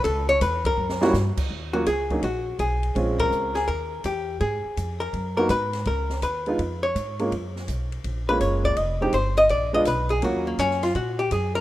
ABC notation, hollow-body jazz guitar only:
X:1
M:4/4
L:1/8
Q:"Swing" 1/4=165
K:F#phr
V:1 name="Hollow-body jazz guitar"
A c B ^A3 z2 | [K:Ebm] z G A2 G2 A2- | A B2 A B2 =G2 | A3 B2 B c2 |
B2 c3 d3 | z4 z c d =d | e =G =c e =d e _c A | G B, D F G =G A B |]